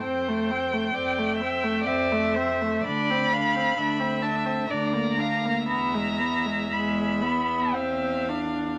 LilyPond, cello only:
\new Staff \with { instrumentName = "Cello" } { \clef bass \time 3/4 \key e \phrygian \tempo 4 = 62 f,4 f,4 f,4 | d,4 d,4 d,4 | e,4 e,4 e,4 | }